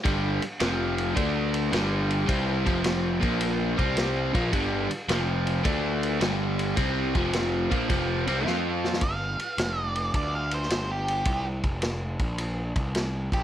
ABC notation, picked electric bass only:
X:1
M:4/4
L:1/8
Q:"Swing" 1/4=107
K:Gm
V:1 name="Picked electric bass" clef=bass
G,,, z F,,,2 D,,2 G,,,2 | C,, F,,,2 B,,,2 C,,2 B,,, | G,,, z F,,,2 D,,2 G,,,2 | C,, F,,,2 B,,, F,,, C,, F,,2 |
G,,, z F,,,2 D,,2 G,,,2 | C,, F,,,2 B,,,2 C,,2 B,,, |]